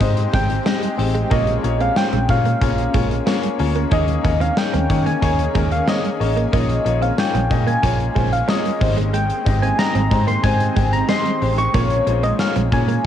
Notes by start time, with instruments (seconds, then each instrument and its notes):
Already playing: ambient pad G#3 C4 G4, soft synth lead D#5, grand piano D#5
0.00 fingered electric bass G#2, grand piano G#3 C4 D#4 G4 C5, kick, closed hi-hat
0.17 closed hi-hat
0.33 fingered electric bass G#1, grand piano G#3 C4 D#4 G4 C5, clean electric guitar G#3, soft synth lead G5, kick, closed hi-hat
0.50 closed hi-hat
0.65 grand piano G#3 C4 D#4 G4 D#5, clean electric guitar C4, snare, tambourine
0.83 closed hi-hat
0.98 fingered electric bass A1, grand piano G#3 C4 D#4 G4 C5, muted clean electric guitar stroke, open hi-hat
1.15 clean electric guitar G#3, closed hi-hat
1.30 fingered electric bass A#1, grand piano A#3 C#4 F4 G#4 C#5, ambient pad A#3 C#4, clean electric guitar A#3, soft synth lead D#5, kick, closed hi-hat
1.47 closed hi-hat
1.63 fingered electric bass A#1, grand piano A#3 C#4 F4 G#4 C#5, muted clean electric guitar stroke, closed hi-hat
1.80 clean electric guitar C4, soft synth lead F5, closed hi-hat
1.96 grand piano A#3 C#4 F4 G#4 C5, soft synth lead G5, snare, tambourine
2.13 fingered electric bass A#1, clean electric guitar C4, closed hi-hat
2.28 fingered electric bass A#2, grand piano A#3 C#4 F4 G#4 C#5, soft synth lead F5, muted clean electric guitar stroke, kick, closed hi-hat
2.45 clean electric guitar A#3, closed hi-hat
2.61 fingered electric bass A#1, grand piano A#3 C#4 F4 G#4 C#5, kick, closed hi-hat
2.78 closed hi-hat
2.94 fingered electric bass A#1, clean electric guitar G#3, grand piano A#3 C#4 F4 G#4 C#5, kick, closed hi-hat
3.11 closed hi-hat
3.26 grand piano A#3 C#4 F4 G#4 C#5, clean electric guitar C4, snare, tambourine
3.43 closed hi-hat
3.59 fingered electric bass D2, grand piano A#3 C#4 F4 G#4 C#5, muted clean electric guitar stroke, open hi-hat
3.76 clean electric guitar A#3, closed hi-hat
3.91 fingered electric bass D#2, ambient pad D#3 G#4, grand piano A#3 C#4 D#4 G#4 C#5, clean electric guitar D#4, soft synth lead D#5, kick, closed hi-hat
4.08 closed hi-hat
4.23 fingered electric bass D#2, grand piano A#3 C#4 D#4 G#4 C#5, muted clean electric guitar stroke, kick, closed hi-hat
4.40 clean electric guitar C4, soft synth lead F5, closed hi-hat
4.56 grand piano A#3 C#4 D#4 G#4 C#5, soft synth lead G5, snare, tambourine
4.73 fingered electric bass D#2, clean electric guitar C4, closed hi-hat
4.89 fingered electric bass D#3, grand piano A#3 C#4 D#4 G#4 C#5, muted clean electric guitar stroke, kick, closed hi-hat
5.06 clean electric guitar A#3, soft synth lead G#5, closed hi-hat
5.21 fingered electric bass D#2, grand piano A#3 C#4 D#4 G#4 C#5, kick, closed hi-hat
5.39 closed hi-hat
5.54 fingered electric bass D#2, clean electric guitar G#3, grand piano A#3 C#4 D#4 G#4 A#4, kick, closed hi-hat
5.71 soft synth lead F5, closed hi-hat
5.87 grand piano A#3 C#4 D#4 G#4 C#5, clean electric guitar C4, soft synth lead D#5, snare, tambourine
6.05 closed hi-hat
6.20 fingered electric bass A1, grand piano A#3 C#4 D#4 G#4 C#5, muted clean electric guitar stroke, open hi-hat
6.37 clean electric guitar A#3, closed hi-hat
6.52 fingered electric bass A#1, ambient pad G#3 A#3 C#4, grand piano A#3 C#4 F4 G#4 C#5, clean electric guitar A#3, soft synth lead D#5, kick, closed hi-hat
6.69 closed hi-hat
6.84 fingered electric bass A#1, grand piano A#3 C#4 F4 G#4 C#5, muted clean electric guitar stroke, closed hi-hat
7.01 clean electric guitar C4, soft synth lead F5, closed hi-hat
7.17 grand piano A#3 C#4 F4 G#4 C#5, soft synth lead G5, snare, tambourine
7.34 fingered electric bass A#1, clean electric guitar C4, closed hi-hat
7.50 fingered electric bass A#2, grand piano A#3 C#4 F4 G#4 D#5, muted clean electric guitar stroke, kick, closed hi-hat
7.67 clean electric guitar A#3, soft synth lead G#5, closed hi-hat
7.82 fingered electric bass A#1, grand piano A#3 C#4 F4 G#4 C#5, kick, closed hi-hat
8.00 closed hi-hat
8.15 fingered electric bass A#1, clean electric guitar G#3, grand piano A#3 C#4 F4 G#4 C5, kick, closed hi-hat
8.33 soft synth lead F5, closed hi-hat
8.48 grand piano A#3 C#4 F4 G#4 C#5, clean electric guitar C4, soft synth lead D#5, snare, tambourine
8.65 closed hi-hat
8.80 fingered electric bass G#1, ambient pad D#3 C4, grand piano G#3 C4 D#4 G4 C5, muted clean electric guitar stroke, kick, open hi-hat
8.97 clean electric guitar G#3, closed hi-hat
9.13 clean electric guitar G#3, soft synth lead G5, closed hi-hat
9.30 closed hi-hat
9.45 fingered electric bass G#1, grand piano G#3 C4 D#4 G4 D#5, muted clean electric guitar stroke, kick, closed hi-hat
9.62 clean electric guitar C4, soft synth lead G#5, closed hi-hat
9.78 grand piano G#3 C4 D#4 G4 D#5, soft synth lead A#5, snare, tambourine
9.95 fingered electric bass G#1, clean electric guitar C4, closed hi-hat
10.11 fingered electric bass G#2, grand piano G#3 C4 D#4 G4 C5, muted clean electric guitar stroke, kick, closed hi-hat
10.27 clean electric guitar A#3, soft synth lead C6, closed hi-hat
10.43 fingered electric bass G#2, grand piano G#3 C4 D#4 G4 C5, soft synth lead G#5, kick, closed hi-hat
10.60 closed hi-hat
10.76 fingered electric bass G#1, grand piano G#3 C4 D#4 G4 C5, clean electric guitar G#3, kick, closed hi-hat
10.93 soft synth lead A#5, closed hi-hat
11.09 grand piano G#3 C4 D#4 G4 D#5, clean electric guitar C4, soft synth lead C6, snare, tambourine
11.25 closed hi-hat
11.41 fingered electric bass A1, grand piano G#3 C4 D#4 G4 C5, muted clean electric guitar stroke, open hi-hat
11.58 clean electric guitar G#3, soft synth lead C#6, closed hi-hat
11.74 fingered electric bass A#1, grand piano A#3 C#4 F4 G#4 C#5, clean electric guitar A#3, soft synth lead C#5, kick, closed hi-hat
11.90 closed hi-hat
12.06 fingered electric bass A#1, grand piano A#3 C#4 F4 G#4 C5, muted clean electric guitar stroke, closed hi-hat
12.23 clean electric guitar C4, soft synth lead D#5, closed hi-hat
12.39 grand piano A#3 C#4 F4 G#4 C#5, soft synth lead F5, snare, tambourine
12.56 fingered electric bass A#1, clean electric guitar C4, closed hi-hat
12.72 fingered electric bass A#2, grand piano A#3 C#4 F4 G#4 C#5, soft synth lead G#5, muted clean electric guitar stroke, kick, closed hi-hat
12.88 clean electric guitar A#3, closed hi-hat